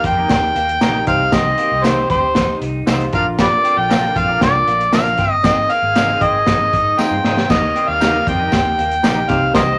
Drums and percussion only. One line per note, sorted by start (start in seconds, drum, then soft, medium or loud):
0.04 kick loud
0.04 closed hi-hat medium
0.29 kick medium
0.29 snare loud
0.29 closed hi-hat medium
0.29 tambourine medium
0.56 closed hi-hat medium
0.69 closed hi-hat medium
0.81 snare loud
0.81 closed hi-hat medium
0.81 tambourine loud
1.07 kick medium
1.07 closed hi-hat medium
1.32 kick loud
1.32 snare loud
1.32 closed hi-hat loud
1.32 tambourine medium
1.58 closed hi-hat medium
1.84 snare loud
1.84 closed hi-hat medium
1.84 tambourine loud
2.10 kick loud
2.10 closed hi-hat medium
2.35 kick loud
2.35 snare loud
2.35 closed hi-hat medium
2.35 tambourine medium
2.62 closed hi-hat medium
2.87 snare loud
2.87 closed hi-hat medium
2.87 tambourine loud
3.00 closed hi-hat soft
3.13 kick medium
3.13 closed hi-hat medium
3.39 kick loud
3.39 snare loud
3.39 closed hi-hat loud
3.39 tambourine medium
3.65 closed hi-hat medium
3.90 snare loud
3.90 closed hi-hat medium
3.90 tambourine loud
4.16 kick loud
4.16 closed hi-hat medium
4.41 kick loud
4.41 snare loud
4.41 closed hi-hat medium
4.41 tambourine medium
4.68 closed hi-hat medium
4.81 closed hi-hat medium
4.93 snare loud
4.93 closed hi-hat medium
4.93 tambourine medium
5.05 closed hi-hat soft
5.18 kick medium
5.18 snare soft
5.18 closed hi-hat medium
5.44 kick loud
5.44 snare loud
5.44 closed hi-hat loud
5.44 tambourine medium
5.70 closed hi-hat medium
5.95 snare loud
5.95 closed hi-hat medium
5.95 tambourine medium
6.21 kick medium
6.21 closed hi-hat medium
6.47 kick loud
6.47 snare loud
6.47 closed hi-hat medium
6.47 tambourine medium
6.73 kick medium
6.73 closed hi-hat medium
6.99 snare medium
6.99 tambourine loud
7.24 snare medium
7.37 snare medium
7.50 kick loud
7.50 snare loud
7.50 crash medium
7.50 tambourine medium
7.76 closed hi-hat medium
8.01 snare loud
8.01 closed hi-hat medium
8.01 tambourine loud
8.27 kick loud
8.27 closed hi-hat medium
8.52 kick loud
8.52 snare loud
8.52 closed hi-hat medium
8.52 tambourine medium
8.79 closed hi-hat medium
8.91 closed hi-hat medium
9.04 snare loud
9.04 closed hi-hat loud
9.04 tambourine medium
9.29 kick medium
9.29 snare soft
9.29 closed hi-hat medium
9.54 kick loud
9.54 snare loud
9.54 closed hi-hat loud
9.54 tambourine medium